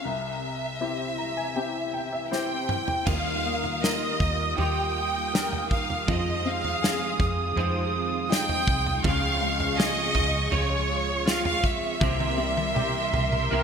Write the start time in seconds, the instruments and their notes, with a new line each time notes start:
0.04 grand piano C2, violin section E5
0.80 grand piano C4 E4 G4
1.18 grand piano A#5
1.37 grand piano G#5
1.55 grand piano C4 E4 G4 G5
1.94 grand piano G5
2.12 grand piano E5
2.31 grand piano C4 E4 G4 C5, violin section G5, snare
2.69 mid tom
2.88 floor tom
3.06 fingered electric bass D#2, clean electric guitar D#3 G3 A#3 D#4 F4, grand piano D#3, string section F4 G4 D#6, violin section F5, kick, floor tom, crash
3.45 grand piano A#3
3.64 floor tom
3.82 clean electric guitar G3 A#3 D#4 F4, grand piano A#4, violin section D#5, snare
4.20 fingered electric bass D#2, kick, floor tom
4.56 fingered electric bass D#2, clean electric guitar D#3 G3 A#3 D#4 F4, grand piano G4, violin section G5, floor tom
5.33 grand piano A#4, snare
5.53 floor tom
5.71 violin section F5, kick
5.90 floor tom
6.06 clean electric guitar F2 C3 D#3 G#3 C4 F4, fingered electric bass F2, grand piano F3, string section G#4 D#6, violin section D#5, kick, floor tom
6.45 grand piano C4
6.49 violin section F5
6.64 floor tom
6.82 grand piano G#4, snare
7.19 fingered electric bass F2, kick, floor tom
7.56 clean electric guitar F2 C3 D#3 G#3 C4 F4, fingered electric bass F2, grand piano C5, floor tom
8.29 grand piano D#4, violin section G5, snare
8.49 floor tom
8.67 fingered electric bass C2, kick
8.86 floor tom
9.03 fingered electric bass C#2, clean electric guitar C#3 F3 G#3 C4 F4, grand piano C#3, string section G#4 C#6, violin section F5, kick, floor tom
9.41 grand piano G#3
9.60 floor tom
9.77 grand piano G#4, violin section D#5, snare
10.14 fingered electric bass C#2, kick, floor tom
10.51 fingered electric bass C#2, clean electric guitar C#3 F3 G#3 F4, violin section C#5, floor tom
11.26 clean electric guitar F3 G#3 C4 F4, grand piano F4, violin section F5, snare
11.45 violin section F5, floor tom
11.64 violin section E5, kick
12.00 fingered electric bass C2, grand piano C3, clean electric guitar C3 E3 A#3 C4 G4, string section A#4 E5 C6, kick, high tom
12.20 high tom
12.37 grand piano G3
12.57 high tom
12.75 grand piano G4, mid tom
13.13 fingered electric bass C2, mid tom
13.32 mid tom
13.50 fingered electric bass C2, clean electric guitar C3 E3 A#3 C4 G4, grand piano A#4